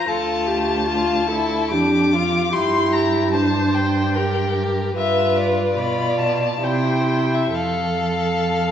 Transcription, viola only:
0, 0, Header, 1, 2, 480
1, 0, Start_track
1, 0, Tempo, 784314
1, 50, Time_signature, 3, 2, 24, 8
1, 530, Tempo, 851064
1, 1010, Tempo, 814111
1, 3410, Tempo, 845070
1, 3890, Tempo, 913242
1, 4984, End_track
2, 0, Start_track
2, 0, Title_t, "Viola"
2, 0, Program_c, 0, 41
2, 51, Note_on_c, 0, 69, 50
2, 286, Note_on_c, 0, 67, 44
2, 295, Note_off_c, 0, 69, 0
2, 531, Note_on_c, 0, 65, 45
2, 539, Note_off_c, 0, 67, 0
2, 763, Note_on_c, 0, 69, 50
2, 772, Note_off_c, 0, 65, 0
2, 1006, Note_on_c, 0, 67, 45
2, 1015, Note_off_c, 0, 69, 0
2, 1253, Note_on_c, 0, 65, 45
2, 1262, Note_off_c, 0, 67, 0
2, 1486, Note_off_c, 0, 65, 0
2, 1490, Note_on_c, 0, 67, 47
2, 1971, Note_on_c, 0, 72, 56
2, 1980, Note_off_c, 0, 67, 0
2, 2449, Note_on_c, 0, 70, 42
2, 2457, Note_off_c, 0, 72, 0
2, 2923, Note_off_c, 0, 70, 0
2, 2926, Note_on_c, 0, 71, 47
2, 3410, Note_on_c, 0, 74, 49
2, 3418, Note_off_c, 0, 71, 0
2, 3890, Note_on_c, 0, 72, 42
2, 3898, Note_off_c, 0, 74, 0
2, 4370, Note_off_c, 0, 72, 0
2, 4373, Note_on_c, 0, 69, 43
2, 4984, Note_off_c, 0, 69, 0
2, 4984, End_track
0, 0, End_of_file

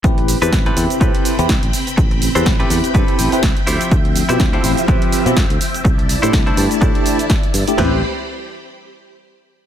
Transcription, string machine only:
0, 0, Header, 1, 2, 480
1, 0, Start_track
1, 0, Key_signature, 0, "minor"
1, 0, Tempo, 483871
1, 42, Time_signature, 4, 2, 24, 8
1, 9587, End_track
2, 0, Start_track
2, 0, Title_t, "String machine"
2, 0, Program_c, 0, 50
2, 42, Note_on_c, 0, 60, 84
2, 44, Note_on_c, 0, 79, 92
2, 44, Note_on_c, 0, 83, 78
2, 3606, Note_off_c, 0, 60, 0
2, 3607, Note_off_c, 0, 83, 0
2, 3643, Note_on_c, 0, 53, 85
2, 3644, Note_on_c, 0, 60, 79
2, 3646, Note_on_c, 0, 76, 77
2, 5763, Note_off_c, 0, 79, 0
2, 5781, Note_off_c, 0, 53, 0
2, 5781, Note_off_c, 0, 60, 0
2, 5782, Note_off_c, 0, 76, 0
2, 5801, Note_on_c, 0, 81, 93
2, 5802, Note_on_c, 0, 64, 85
2, 5802, Note_on_c, 0, 74, 75
2, 7702, Note_off_c, 0, 74, 0
2, 7702, Note_off_c, 0, 81, 0
2, 7703, Note_off_c, 0, 64, 0
2, 7721, Note_on_c, 0, 67, 71
2, 7722, Note_on_c, 0, 83, 80
2, 7723, Note_on_c, 0, 72, 67
2, 7944, Note_off_c, 0, 67, 0
2, 7945, Note_off_c, 0, 72, 0
2, 7945, Note_off_c, 0, 83, 0
2, 9587, End_track
0, 0, End_of_file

